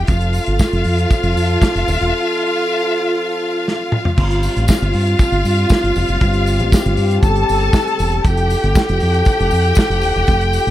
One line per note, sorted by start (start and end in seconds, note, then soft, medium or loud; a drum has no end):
0.07 0.38 F1 loud
0.07 4.01 F3 medium
0.07 4.01 C4 medium
0.07 4.14 F4 medium
0.07 4.01 F4 medium
0.07 4.01 A4 medium
0.07 4.14 F5 loud
0.07 kick loud
0.07 closed hi-hat medium
0.07 tambourine soft
0.21 closed hi-hat soft
0.33 open hi-hat medium
0.33 tambourine medium
0.46 0.57 G1 medium
0.46 closed hi-hat soft
0.59 kick loud
0.59 snare loud
0.59 tambourine medium
0.73 0.83 F1 medium
0.73 closed hi-hat soft
0.84 1.05 F2 medium
0.84 open hi-hat medium
0.98 closed hi-hat medium
1.11 kick loud
1.11 closed hi-hat medium
1.11 tambourine medium
1.23 1.33 F1 loud
1.23 closed hi-hat soft
1.36 1.56 F2 medium
1.36 open hi-hat medium
1.36 tambourine medium
1.49 closed hi-hat soft
1.62 kick loud
1.62 snare loud
1.62 tambourine medium
1.75 1.85 F1 medium
1.75 closed hi-hat soft
1.88 1.98 D#1 medium
1.88 open hi-hat medium
1.88 tambourine medium
2.01 2.10 E1 medium
2.01 closed hi-hat soft
3.68 snare medium
3.92 mid tom medium
4.05 floor tom medium
4.16 4.47 G1 loud
4.16 8.21 G3 medium
4.16 8.21 C4 medium
4.16 7.18 F4 medium
4.16 6.20 F4 medium
4.16 7.19 F5 medium
4.16 kick loud
4.16 crash medium
4.31 closed hi-hat soft
4.43 open hi-hat medium
4.43 tambourine medium
4.56 4.66 A1 medium
4.56 closed hi-hat medium
4.68 kick loud
4.68 snare loud
4.68 tambourine loud
4.82 4.91 G1 loud
4.82 closed hi-hat soft
4.93 5.14 G2 loud
4.93 open hi-hat medium
5.07 closed hi-hat medium
5.19 kick loud
5.19 closed hi-hat medium
5.19 tambourine medium
5.32 5.42 G1 loud
5.32 closed hi-hat soft
5.45 5.64 G2 medium
5.45 open hi-hat medium
5.45 tambourine medium
5.59 closed hi-hat soft
5.69 kick loud
5.69 snare loud
5.69 tambourine medium
5.83 5.93 G1 medium
5.83 closed hi-hat soft
5.96 6.06 F1 loud
5.96 open hi-hat medium
5.96 tambourine medium
6.08 6.18 F#1 medium
6.08 closed hi-hat soft
6.21 6.60 G1 loud
6.21 8.23 G4 loud
6.21 kick loud
6.21 closed hi-hat medium
6.34 closed hi-hat soft
6.46 open hi-hat medium
6.46 tambourine medium
6.59 6.70 A1 loud
6.59 closed hi-hat medium
6.72 kick loud
6.72 snare loud
6.72 tambourine loud
6.86 6.95 G1 loud
6.86 closed hi-hat soft
6.97 7.17 G2 loud
6.97 open hi-hat medium
6.97 tambourine soft
7.11 closed hi-hat medium
7.23 7.42 G1 loud
7.23 8.23 A4 medium
7.23 8.23 A5 loud
7.23 kick loud
7.23 closed hi-hat medium
7.23 tambourine medium
7.36 closed hi-hat soft
7.49 7.68 G1 medium
7.49 open hi-hat medium
7.49 tambourine soft
7.61 closed hi-hat soft
7.73 kick loud
7.73 snare loud
7.73 tambourine loud
7.87 closed hi-hat soft
7.99 8.19 E1 medium
7.99 open hi-hat medium
7.99 tambourine medium
8.12 closed hi-hat soft
8.24 8.54 F1 loud
8.24 10.71 F3 medium
8.24 10.71 C4 medium
8.24 10.27 E4 medium
8.24 10.71 G4 medium
8.24 10.71 A4 medium
8.24 10.71 G5 loud
8.24 kick loud
8.24 closed hi-hat medium
8.24 tambourine soft
8.37 closed hi-hat medium
8.50 open hi-hat medium
8.50 tambourine medium
8.63 8.73 G1 medium
8.63 closed hi-hat soft
8.75 kick loud
8.75 snare loud
8.75 tambourine loud
8.89 8.99 F1 loud
8.89 closed hi-hat soft
9.00 9.21 F2 medium
9.00 open hi-hat medium
9.00 tambourine soft
9.14 closed hi-hat medium
9.25 kick loud
9.25 closed hi-hat medium
9.25 tambourine medium
9.40 9.49 F1 medium
9.40 closed hi-hat soft
9.51 9.71 F2 medium
9.51 open hi-hat medium
9.51 tambourine medium
9.65 closed hi-hat soft
9.75 kick loud
9.75 snare loud
9.75 tambourine loud
9.90 10.03 F1 medium
9.90 closed hi-hat soft
10.01 10.13 D#1 medium
10.01 open hi-hat medium
10.01 tambourine medium
10.16 10.25 E1 medium
10.16 closed hi-hat soft
10.27 10.57 F1 medium
10.27 10.71 F4 medium
10.27 kick loud
10.27 closed hi-hat medium
10.27 tambourine soft
10.41 closed hi-hat soft
10.53 open hi-hat medium
10.53 tambourine medium
10.67 10.71 A1 medium
10.67 closed hi-hat soft